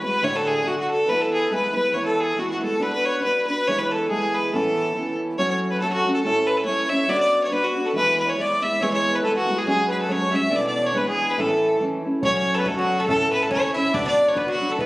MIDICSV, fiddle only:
0, 0, Header, 1, 2, 480
1, 0, Start_track
1, 0, Key_signature, 3, "major"
1, 0, Tempo, 428571
1, 251, Time_signature, 2, 2, 24, 8
1, 16641, End_track
2, 0, Start_track
2, 0, Title_t, "Fiddle"
2, 0, Program_c, 0, 110
2, 44, Note_on_c, 0, 71, 88
2, 270, Note_on_c, 0, 73, 100
2, 287, Note_off_c, 0, 71, 0
2, 402, Note_on_c, 0, 69, 89
2, 418, Note_off_c, 0, 73, 0
2, 530, Note_on_c, 0, 68, 92
2, 546, Note_off_c, 0, 69, 0
2, 757, Note_on_c, 0, 66, 72
2, 774, Note_off_c, 0, 68, 0
2, 877, Note_off_c, 0, 66, 0
2, 899, Note_on_c, 0, 66, 70
2, 1006, Note_off_c, 0, 66, 0
2, 1017, Note_on_c, 0, 69, 82
2, 1226, Note_on_c, 0, 71, 90
2, 1243, Note_off_c, 0, 69, 0
2, 1364, Note_on_c, 0, 69, 79
2, 1381, Note_off_c, 0, 71, 0
2, 1487, Note_off_c, 0, 69, 0
2, 1494, Note_on_c, 0, 68, 86
2, 1690, Note_off_c, 0, 68, 0
2, 1730, Note_on_c, 0, 71, 90
2, 1957, Note_off_c, 0, 71, 0
2, 1964, Note_on_c, 0, 71, 82
2, 2172, Note_on_c, 0, 73, 92
2, 2189, Note_off_c, 0, 71, 0
2, 2292, Note_off_c, 0, 73, 0
2, 2299, Note_on_c, 0, 69, 75
2, 2468, Note_on_c, 0, 68, 83
2, 2484, Note_off_c, 0, 69, 0
2, 2677, Note_on_c, 0, 66, 75
2, 2694, Note_off_c, 0, 68, 0
2, 2795, Note_off_c, 0, 66, 0
2, 2801, Note_on_c, 0, 66, 68
2, 2919, Note_off_c, 0, 66, 0
2, 2932, Note_on_c, 0, 69, 83
2, 3168, Note_on_c, 0, 71, 94
2, 3185, Note_off_c, 0, 69, 0
2, 3275, Note_off_c, 0, 71, 0
2, 3282, Note_on_c, 0, 71, 88
2, 3419, Note_on_c, 0, 73, 94
2, 3436, Note_off_c, 0, 71, 0
2, 3623, Note_off_c, 0, 73, 0
2, 3630, Note_on_c, 0, 71, 82
2, 3871, Note_off_c, 0, 71, 0
2, 3894, Note_on_c, 0, 71, 92
2, 4119, Note_on_c, 0, 73, 104
2, 4135, Note_off_c, 0, 71, 0
2, 4242, Note_on_c, 0, 71, 79
2, 4259, Note_off_c, 0, 73, 0
2, 4388, Note_on_c, 0, 69, 81
2, 4405, Note_off_c, 0, 71, 0
2, 4587, Note_off_c, 0, 69, 0
2, 4594, Note_on_c, 0, 68, 77
2, 4866, Note_on_c, 0, 71, 76
2, 4882, Note_off_c, 0, 68, 0
2, 5074, Note_off_c, 0, 71, 0
2, 5090, Note_on_c, 0, 69, 82
2, 5775, Note_off_c, 0, 69, 0
2, 6029, Note_on_c, 0, 73, 95
2, 6149, Note_off_c, 0, 73, 0
2, 6164, Note_on_c, 0, 73, 76
2, 6270, Note_off_c, 0, 73, 0
2, 6396, Note_on_c, 0, 71, 70
2, 6493, Note_off_c, 0, 71, 0
2, 6500, Note_on_c, 0, 69, 91
2, 6624, Note_off_c, 0, 69, 0
2, 6640, Note_on_c, 0, 66, 86
2, 6861, Note_off_c, 0, 66, 0
2, 6882, Note_on_c, 0, 69, 75
2, 6974, Note_off_c, 0, 69, 0
2, 6981, Note_on_c, 0, 69, 101
2, 7246, Note_on_c, 0, 71, 93
2, 7263, Note_off_c, 0, 69, 0
2, 7362, Note_on_c, 0, 69, 83
2, 7379, Note_off_c, 0, 71, 0
2, 7445, Note_off_c, 0, 69, 0
2, 7451, Note_on_c, 0, 73, 86
2, 7717, Note_on_c, 0, 76, 92
2, 7734, Note_off_c, 0, 73, 0
2, 7946, Note_on_c, 0, 74, 104
2, 7963, Note_off_c, 0, 76, 0
2, 8062, Note_off_c, 0, 74, 0
2, 8069, Note_on_c, 0, 74, 106
2, 8294, Note_off_c, 0, 74, 0
2, 8334, Note_on_c, 0, 73, 74
2, 8429, Note_on_c, 0, 71, 96
2, 8446, Note_off_c, 0, 73, 0
2, 8557, Note_on_c, 0, 66, 83
2, 8574, Note_off_c, 0, 71, 0
2, 8805, Note_on_c, 0, 69, 77
2, 8822, Note_off_c, 0, 66, 0
2, 8903, Note_off_c, 0, 69, 0
2, 8910, Note_on_c, 0, 71, 108
2, 9149, Note_off_c, 0, 71, 0
2, 9183, Note_on_c, 0, 71, 88
2, 9293, Note_on_c, 0, 73, 81
2, 9310, Note_off_c, 0, 71, 0
2, 9421, Note_on_c, 0, 74, 87
2, 9437, Note_off_c, 0, 73, 0
2, 9663, Note_on_c, 0, 76, 87
2, 9680, Note_off_c, 0, 74, 0
2, 9891, Note_on_c, 0, 73, 96
2, 9908, Note_off_c, 0, 76, 0
2, 10006, Note_off_c, 0, 73, 0
2, 10012, Note_on_c, 0, 73, 88
2, 10255, Note_on_c, 0, 71, 74
2, 10272, Note_off_c, 0, 73, 0
2, 10334, Note_off_c, 0, 71, 0
2, 10334, Note_on_c, 0, 71, 52
2, 10357, Note_on_c, 0, 69, 81
2, 10373, Note_off_c, 0, 71, 0
2, 10478, Note_off_c, 0, 69, 0
2, 10495, Note_on_c, 0, 66, 81
2, 10737, Note_on_c, 0, 68, 81
2, 10754, Note_off_c, 0, 66, 0
2, 10831, Note_off_c, 0, 68, 0
2, 10847, Note_on_c, 0, 68, 99
2, 11076, Note_off_c, 0, 68, 0
2, 11108, Note_on_c, 0, 71, 77
2, 11196, Note_off_c, 0, 71, 0
2, 11225, Note_on_c, 0, 69, 70
2, 11332, Note_on_c, 0, 73, 86
2, 11349, Note_off_c, 0, 69, 0
2, 11593, Note_on_c, 0, 76, 89
2, 11610, Note_off_c, 0, 73, 0
2, 11828, Note_on_c, 0, 74, 102
2, 11845, Note_off_c, 0, 76, 0
2, 11933, Note_off_c, 0, 74, 0
2, 11951, Note_on_c, 0, 74, 88
2, 12171, Note_on_c, 0, 73, 76
2, 12188, Note_off_c, 0, 74, 0
2, 12295, Note_on_c, 0, 71, 78
2, 12312, Note_off_c, 0, 73, 0
2, 12406, Note_off_c, 0, 71, 0
2, 12421, Note_on_c, 0, 68, 81
2, 12659, Note_on_c, 0, 71, 65
2, 12676, Note_off_c, 0, 68, 0
2, 12771, Note_on_c, 0, 69, 84
2, 12788, Note_off_c, 0, 71, 0
2, 13232, Note_off_c, 0, 69, 0
2, 13723, Note_on_c, 0, 73, 109
2, 13831, Note_off_c, 0, 73, 0
2, 13868, Note_on_c, 0, 73, 96
2, 14051, Note_on_c, 0, 69, 68
2, 14067, Note_off_c, 0, 73, 0
2, 14110, Note_on_c, 0, 71, 77
2, 14127, Note_off_c, 0, 69, 0
2, 14204, Note_on_c, 0, 69, 72
2, 14221, Note_off_c, 0, 71, 0
2, 14309, Note_off_c, 0, 69, 0
2, 14316, Note_on_c, 0, 66, 79
2, 14556, Note_on_c, 0, 69, 81
2, 14573, Note_off_c, 0, 66, 0
2, 14654, Note_off_c, 0, 69, 0
2, 14660, Note_on_c, 0, 69, 109
2, 14900, Note_off_c, 0, 69, 0
2, 14930, Note_on_c, 0, 71, 90
2, 15036, Note_on_c, 0, 69, 85
2, 15053, Note_off_c, 0, 71, 0
2, 15138, Note_off_c, 0, 69, 0
2, 15146, Note_on_c, 0, 73, 85
2, 15382, Note_off_c, 0, 73, 0
2, 15396, Note_on_c, 0, 76, 92
2, 15620, Note_on_c, 0, 74, 118
2, 15637, Note_off_c, 0, 76, 0
2, 15746, Note_off_c, 0, 74, 0
2, 15767, Note_on_c, 0, 74, 100
2, 15997, Note_on_c, 0, 73, 82
2, 16014, Note_off_c, 0, 74, 0
2, 16103, Note_on_c, 0, 71, 87
2, 16120, Note_off_c, 0, 73, 0
2, 16227, Note_off_c, 0, 71, 0
2, 16245, Note_on_c, 0, 66, 94
2, 16486, Note_on_c, 0, 69, 70
2, 16503, Note_off_c, 0, 66, 0
2, 16583, Note_on_c, 0, 71, 116
2, 16600, Note_off_c, 0, 69, 0
2, 16641, Note_off_c, 0, 71, 0
2, 16641, End_track
0, 0, End_of_file